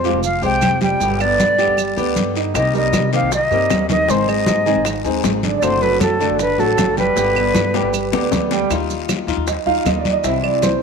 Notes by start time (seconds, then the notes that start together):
Already playing: F2 C5
0.04 F3 G#3 C4 F4 G4 F5, high conga, short guiro, maracas
0.14 F1
0.23 F5, muted nylon-string guitar stroke, high conga, long guiro, maracas
0.42 C2 F3 G#3 C4 G4 C5 G5, high conga, maracas
0.61 F1 F3 G#3 C4, high conga, short guiro, claves, maracas
0.81 G3 G4 G5, high conga, short guiro, maracas
1.00 G1 B2 D3 G3 B3 G4 G5, high conga, long guiro, maracas
1.20 B3 B4 D5, high conga, claves, maracas
1.39 G2, high conga, short guiro, maracas
1.58 D3 G3 B3 G4 G5, high conga, short guiro, maracas
1.68 G1
1.77 muted nylon-string guitar stroke, high conga, long guiro, claves, maracas
1.97 D2 D3 G3 B3 G4 B4 D5, high conga, maracas
2.16 G2 D3 G3 B3 G4, high conga, short guiro, maracas
2.35 D#4 D#5, short guiro, maracas
2.54 C2 C3 D#3 A#3 C4 G4 D#5, high bongo, high conga, long guiro, claves, maracas
2.74 G3 G4 A#4 D#5, high bongo, high conga, maracas
2.93 C3, high bongo, high conga, short guiro, claves, maracas
3.12 D#3 A#3 C4 D#4 G4 D#5 F5, high bongo, high conga, short guiro, maracas
3.22 C2
3.31 D#5, muted nylon-string guitar stroke, high bongo, high conga, long guiro, maracas
3.51 G2 D#3 G3 A#3 C4 G4 A#4, high conga, maracas
3.70 D#2 D#3 A#3 C4 G4, high bongo, low bongo, high conga, short guiro, claves, maracas
3.89 D#3 D#4 D#5, high bongo, high conga, short guiro, maracas
4.07 G#1 D#3 G#3 C4 D#4 G#4 C5 D#5, high bongo, high conga, long guiro, maracas
4.27 G#3 G#4 C5 D#5, high bongo, high conga, claves, maracas
4.46 G#2, high bongo, high conga, short guiro, maracas
4.66 D#3 G#3 C4 D#4 G#4 D#5, high bongo, high conga, short guiro, maracas
4.75 G#1
4.85 muted nylon-string guitar stroke, high bongo, high conga, long guiro, claves, maracas
5.04 D#2 G#3 C4 D#4 G#4 C5, high bongo, high conga, maracas
5.24 G#1 G#3 C4 D#4 G#4, high bongo, low bongo, high conga, short guiro, maracas
5.43 D3 D5, high conga, short guiro, maracas
5.59 F#1 C3 F#3 D5, high bongo, long guiro, maracas
5.63 A3 D4 F#4 C5, high conga, claves
5.82 F#3 F#4 A4 B4, high bongo, high conga, maracas
6.00 F#2 A4, high bongo, high conga, short guiro, claves, maracas
6.19 D3 F#3 A3 D4 F#4 D5, high bongo, high conga, short guiro, maracas
6.29 F#1
6.39 B4, muted nylon-string guitar stroke, high bongo, high conga, long guiro, maracas
6.58 A1 F#3 A3 D4 F#4 A4, high conga, maracas
6.77 F#1 F#3 A3 D4 F#4, high bongo, low bongo, high conga, short guiro, claves, maracas
6.97 G3 G4 B4 G5, high bongo, high conga, short guiro, maracas
7.16 G1 B2 D3 G3 B3 G4 G5, high bongo, high conga, long guiro, maracas
7.35 B3 B4 D5, high bongo, high conga, claves, maracas
7.54 G2, high bongo, high conga, short guiro, maracas
7.74 D3 G3 B3 G4 G5, high bongo, high conga, short guiro, maracas
7.83 G1
7.94 muted nylon-string guitar stroke, high conga, long guiro, claves, maracas
8.12 D2 D3 G3 B3 G4 B4 D5, low bongo, high conga, maracas
8.31 D2 D3 G3 B3 G4, low bongo, high conga, short guiro, maracas
8.51 G3 G4 G5, low bongo, short guiro, maracas
8.70 D#2 D#3 G3 D#4 F4, high bongo, high conga, long guiro, claves, maracas
8.90 high conga, maracas
9.09 high bongo, high conga, short guiro, claves, maracas
9.27 D#2 G3 D#4 F4, high bongo, high conga, short guiro, maracas
9.37 D#2
9.47 D#5, muted nylon-string guitar stroke, high bongo, high conga, long guiro, maracas
9.66 D#2 G3 D#4 F4 F5, high bongo, high conga
9.85 D#2 D#3 G3 D#4 F4 D#5, high bongo, low bongo, high conga, short guiro, claves, maracas
9.99 D5
10.05 high bongo, high conga, short guiro, maracas
10.12 D#5
10.23 C2 C3 E3 G3 C4 E4 E5, high bongo, high conga, long guiro, maracas
10.43 D5, high conga, claves
10.62 C5, high bongo, high conga, short guiro, maracas